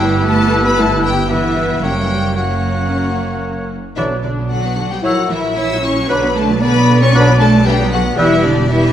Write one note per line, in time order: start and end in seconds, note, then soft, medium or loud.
0.00 1.78 G1 loud
0.00 0.25 G3 medium
0.00 1.26 B3 loud
0.00 1.26 B3 medium
0.00 0.23 E4 medium
0.00 1.26 E4 medium
0.00 0.25 G4 medium
0.00 1.26 B4 medium
0.00 0.25 G5 medium
0.00 1.26 E6 medium
0.24 0.64 A3 loud
0.24 0.76 G4 medium
0.24 0.64 A4 medium
0.24 0.63 A5 loud
0.63 0.70 B3 medium
0.63 0.77 B4 loud
0.63 0.78 B5 loud
0.77 0.85 A3 medium
0.77 0.96 B3 medium
0.77 1.31 E4 medium
0.77 0.96 E4 medium
0.77 1.04 A4 loud
0.77 1.04 A5 loud
1.03 1.12 G3 medium
1.03 1.29 G4 loud
1.03 1.30 G5 loud
1.29 1.81 E3 medium
1.29 1.81 B3 medium
1.29 1.82 E4 medium
1.29 1.81 E4 medium
1.29 1.56 G4 medium
1.29 1.82 B4 medium
1.29 1.82 E5 loud
1.29 1.84 E6 medium
1.56 1.68 B4 medium
1.82 3.73 F#1 medium
1.82 2.36 G3 medium
1.82 2.34 A#3 medium
1.82 2.35 A#3 medium
1.82 2.02 A#3 medium
1.82 2.36 C#4 medium
1.82 2.02 C#4 medium
1.82 2.36 G4 medium
1.82 3.67 A#4 medium
1.82 2.35 C#5 medium
1.82 2.37 G5 loud
1.82 2.36 F#6 medium
2.35 3.70 F#3 medium
2.35 3.67 A#3 medium
2.35 3.74 A#3 medium
2.35 3.75 C#4 medium
2.35 3.70 F#4 medium
2.35 3.68 C#5 medium
2.35 3.71 F#5 medium
2.35 3.68 F#6 medium
2.89 3.09 A#3 medium
2.89 3.08 C#4 medium
3.96 5.00 B1 medium
3.96 4.09 D3 medium
3.96 4.05 E3 medium
3.96 4.16 F#3 medium
3.96 4.10 D4 medium
3.96 4.16 D4 medium
3.96 4.05 E4 medium
3.96 4.16 D5 medium
3.96 4.04 E5 medium
3.96 4.22 F#6 medium
4.11 4.24 F#3 medium
4.11 4.24 B3 soft
4.22 4.32 D3 medium
4.22 4.38 D3 medium
4.22 4.50 D4 medium
4.22 4.38 D4 medium
4.22 4.30 D5 medium
4.39 4.52 F#3 medium
4.39 4.52 B3 medium
4.50 4.64 D3 medium
4.50 4.90 F#3 medium
4.50 4.64 D4 medium
4.50 4.91 F#4 medium
4.50 4.90 F#5 medium
4.64 4.77 F#3 medium
4.64 4.78 B3 medium
4.78 4.91 D3 medium
4.78 4.91 D4 medium
4.90 5.04 F#3 medium
4.90 5.04 G3 medium
4.90 5.04 B3 soft
4.90 4.96 G4 medium
4.90 5.04 G5 medium
5.03 6.08 A#1 medium
5.03 5.16 E3 medium
5.03 5.22 F#3 medium
5.03 5.12 F#3 medium
5.03 5.22 E4 medium
5.03 5.16 E4 medium
5.03 5.11 F#4 medium
5.03 5.53 A#4 medium
5.03 5.23 C#5 medium
5.03 5.30 F#5 loud
5.03 5.29 E6 medium
5.17 5.30 F#3 medium
5.17 5.30 F#4 medium
5.30 5.43 E3 medium
5.30 5.38 E3 medium
5.30 5.43 E4 medium
5.30 5.56 E4 medium
5.30 5.57 E5 loud
5.44 5.57 F#3 medium
5.44 5.57 F#4 medium
5.57 5.70 E3 medium
5.57 5.83 E4 medium
5.57 5.70 E4 medium
5.57 6.12 C#5 medium
5.57 5.83 E5 loud
5.57 5.84 E6 loud
5.72 5.84 F#3 medium
5.72 5.84 F#4 medium
5.83 5.98 E3 medium
5.83 6.09 C#4 medium
5.83 5.97 E4 medium
5.83 6.09 C#5 medium
5.83 6.10 C#6 loud
5.97 6.10 F#3 medium
5.97 6.10 F#4 medium
6.08 8.14 B1 loud
6.08 6.22 D3 medium
6.08 6.28 F#3 medium
6.08 6.36 B3 loud
6.08 6.27 D4 medium
6.08 6.22 D4 medium
6.08 6.28 B4 medium
6.08 6.61 B4 medium
6.08 6.36 B4 medium
6.08 6.37 B5 loud
6.08 6.35 D6 medium
6.24 6.37 F#3 medium
6.24 6.37 B3 medium
6.35 6.50 D3 medium
6.35 6.61 A3 loud
6.35 6.50 D4 medium
6.35 6.44 A4 loud
6.35 6.62 A5 loud
6.50 6.63 F#3 medium
6.50 6.63 B3 medium
6.61 6.75 D3 medium
6.61 7.01 B3 loud
6.61 6.75 D4 medium
6.61 7.01 B4 loud
6.61 7.64 D5 loud
6.61 7.00 B5 loud
6.75 6.88 F#3 medium
6.75 6.88 B3 medium
6.89 7.02 D3 medium
6.89 7.02 D4 medium
7.01 7.15 F#3 medium
7.01 7.15 B3 medium
7.01 7.14 C#4 loud
7.01 7.06 C#5 loud
7.01 7.14 C#6 loud
7.14 7.27 D3 medium
7.14 7.33 F#3 loud
7.14 7.40 B3 loud
7.14 7.33 D4 medium
7.14 7.27 D4 medium
7.14 7.33 B4 loud
7.14 7.23 B4 loud
7.14 7.40 B5 loud
7.14 7.38 D6 loud
7.29 7.41 F#3 medium
7.29 7.41 B3 medium
7.40 7.54 D3 medium
7.40 7.66 A3 loud
7.40 7.54 D4 medium
7.40 7.49 A4 loud
7.40 7.65 A5 loud
7.55 7.67 F#3 medium
7.55 7.67 B3 medium
7.66 7.79 D3 medium
7.66 7.92 G3 loud
7.66 7.79 D4 medium
7.66 7.76 G4 loud
7.66 8.18 B4 loud
7.66 7.92 G5 loud
7.80 7.93 F#3 medium
7.80 7.93 B3 medium
7.91 8.06 D3 medium
7.91 7.99 F#3 loud
7.91 8.06 D4 medium
7.91 8.01 F#4 loud
7.91 8.17 F#5 loud
8.04 8.18 F#3 medium
8.04 8.17 B3 medium
8.16 8.93 E1 loud
8.16 8.43 E3 medium
8.16 8.30 E3 medium
8.16 8.36 G3 loud
8.16 8.67 G3 medium
8.16 8.30 B3 medium
8.16 8.67 E4 medium
8.16 8.44 E4 loud
8.16 8.68 G4 loud
8.16 8.36 B4 medium
8.16 8.43 E5 loud
8.16 8.42 E6 medium
8.31 8.44 G3 medium
8.31 8.44 E4 medium
8.43 8.70 D3 medium
8.43 8.57 E3 medium
8.43 8.56 B3 medium
8.43 8.70 D4 loud
8.43 8.70 D5 loud
8.57 8.70 G3 medium
8.57 8.70 E4 medium
8.69 8.82 E3 medium
8.69 8.93 E3 loud
8.69 8.93 G3 loud
8.69 8.82 B3 medium
8.69 8.93 E4 loud
8.69 8.93 E4 medium
8.69 8.93 G4 medium
8.69 8.93 E5 loud
8.81 8.93 G3 medium
8.81 8.93 E4 medium